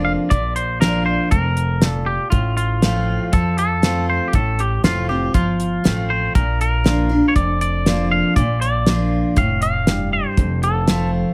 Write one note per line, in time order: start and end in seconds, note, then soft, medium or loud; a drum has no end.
0.00 0.15 F1 medium
0.00 0.27 F2 medium
0.00 0.29 F3 medium
0.00 0.29 A#3 medium
0.00 0.29 D4 medium
0.00 0.30 F4 medium
0.05 0.12 F5 medium
0.30 1.15 A#1 medium
0.30 1.27 A#2 medium
0.30 0.55 D5 medium
0.30 kick loud
0.30 closed hi-hat medium
0.56 0.80 C5 medium
0.56 closed hi-hat medium
0.81 1.30 F3 medium
0.81 1.30 A#3 medium
0.81 1.30 D4 medium
0.81 1.30 F4 medium
0.81 1.05 A#4 medium
0.81 snare loud
0.81 closed hi-hat medium
1.06 1.31 C5 medium
1.31 2.16 F1 medium
1.31 1.80 F2 medium
1.31 1.85 A#4 medium
1.31 kick loud
1.31 closed hi-hat soft
1.57 closed hi-hat medium
1.82 2.30 A#2 medium
1.82 2.09 A4 medium
1.82 snare loud
1.82 closed hi-hat medium
2.06 2.30 G4 medium
2.30 3.17 A1 medium
2.30 3.28 A2 medium
2.30 2.56 F4 medium
2.30 kick loud
2.30 closed hi-hat medium
2.57 3.35 F4 medium
2.57 closed hi-hat medium
2.82 3.31 F3 medium
2.82 3.31 A3 medium
2.82 3.31 C4 medium
2.82 3.32 F4 medium
2.82 snare loud
2.82 closed hi-hat medium
3.33 4.17 F2 medium
3.33 3.81 F3 medium
3.33 3.57 A4 medium
3.33 kick loud
3.33 closed hi-hat medium
3.58 4.05 A4 medium
3.58 closed hi-hat medium
3.82 4.31 F3 medium
3.82 4.31 A3 medium
3.82 4.32 C4 medium
3.82 4.32 F4 medium
3.82 snare loud
3.82 closed hi-hat medium
4.10 4.27 C5 medium
4.28 4.34 G4 medium
4.33 4.76 A1 medium
4.33 5.29 A2 medium
4.33 4.60 A4 medium
4.33 kick loud
4.33 closed hi-hat medium
4.59 4.83 G4 medium
4.59 closed hi-hat medium
4.84 5.27 F1 medium
4.84 5.08 F3 medium
4.84 5.08 A3 medium
4.84 5.09 C4 medium
4.84 5.09 F4 medium
4.84 5.08 F4 medium
4.84 snare loud
4.84 closed hi-hat medium
5.09 5.34 C4 soft
5.09 5.33 F4 soft
5.09 5.34 G4 medium
5.34 5.77 G1 medium
5.34 5.83 F3 medium
5.34 6.12 F4 medium
5.34 kick loud
5.34 closed hi-hat medium
5.60 closed hi-hat medium
5.84 6.28 A1 medium
5.84 6.32 F3 medium
5.84 6.32 A3 medium
5.84 6.33 C4 medium
5.84 6.33 F4 medium
5.84 snare loud
5.84 closed hi-hat medium
6.10 6.33 C5 medium
6.35 7.19 A#1 medium
6.35 7.31 A#2 medium
6.35 6.59 A#4 medium
6.35 kick loud
6.35 closed hi-hat medium
6.61 7.28 A#4 medium
6.61 closed hi-hat medium
6.84 7.09 F3 medium
6.84 7.10 A#3 medium
6.84 7.10 D4 medium
6.84 7.08 F4 medium
6.84 snare loud
6.84 closed hi-hat medium
7.09 7.35 D4 soft
7.09 7.34 F4 medium
7.28 7.35 C#5 medium
7.36 8.20 F1 medium
7.36 8.32 F2 medium
7.36 7.60 D5 medium
7.36 kick medium
7.36 closed hi-hat medium
7.61 8.08 D5 medium
7.61 closed hi-hat medium
7.86 8.34 F3 medium
7.86 8.34 A#3 medium
7.86 8.35 D4 medium
7.86 8.35 F4 medium
7.86 snare loud
7.86 closed hi-hat medium
8.12 8.35 F5 medium
8.36 9.21 A#1 medium
8.36 9.33 A#2 medium
8.36 8.60 D5 medium
8.36 kick loud
8.36 closed hi-hat medium
8.61 9.37 D5 medium
8.61 closed hi-hat medium
8.86 9.35 F3 medium
8.86 9.35 A#3 medium
8.86 9.36 D4 medium
8.86 9.36 F4 medium
8.86 snare loud
8.86 closed hi-hat medium
9.36 10.21 F1 medium
9.36 9.85 A2 medium
9.36 9.61 F5 medium
9.36 kick loud
9.36 closed hi-hat medium
9.62 10.09 F5 medium
9.62 closed hi-hat medium
9.87 10.35 G2 medium
9.87 snare loud
9.87 closed hi-hat medium
10.13 10.60 C5 medium
10.37 11.22 F1 medium
10.37 11.34 F2 medium
10.37 kick loud
10.37 closed hi-hat medium
10.63 11.10 A4 medium
10.63 closed hi-hat medium
10.88 11.34 F3 medium
10.88 11.34 A3 medium
10.88 11.34 C4 medium
10.88 11.34 F4 medium
10.88 snare loud
10.88 closed hi-hat medium